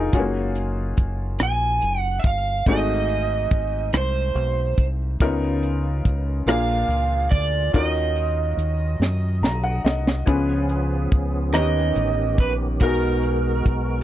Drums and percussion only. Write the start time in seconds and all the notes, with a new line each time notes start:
0.13 kick, closed hi-hat
0.55 closed hi-hat
0.97 kick, closed hi-hat
1.39 cross-stick, closed hi-hat
1.81 closed hi-hat
2.24 kick, closed hi-hat
2.66 kick, closed hi-hat
3.08 closed hi-hat
3.51 kick, closed hi-hat
3.93 cross-stick, closed hi-hat
4.36 closed hi-hat
4.78 kick, closed hi-hat
5.20 kick, closed hi-hat
5.63 closed hi-hat
6.05 kick, closed hi-hat
6.48 cross-stick, closed hi-hat
6.90 closed hi-hat
7.32 kick, closed hi-hat
7.74 kick, closed hi-hat
8.16 closed hi-hat
8.59 closed hi-hat
9.02 snare
9.44 snare
9.86 snare
10.07 snare
10.27 kick, closed hi-hat
10.69 closed hi-hat
11.12 kick, closed hi-hat
11.54 cross-stick, closed hi-hat
11.96 closed hi-hat
12.38 kick, closed hi-hat
12.80 kick, closed hi-hat
13.23 closed hi-hat
13.66 kick, closed hi-hat